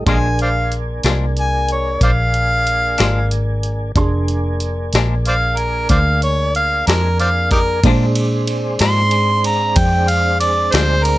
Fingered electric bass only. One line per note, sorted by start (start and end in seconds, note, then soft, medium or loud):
0.07 1.02 A#1 medium
1.04 1.99 C2 medium
2.01 2.96 A#1 medium
3.00 3.94 G#1 medium
3.95 4.90 F1 medium
4.93 5.87 A#1 medium
5.90 6.84 D2 medium
6.88 7.81 F2 medium
7.84 8.78 A#2 medium
8.81 9.74 G#2 medium
9.76 10.71 F2 medium
10.74 11.18 D2 loud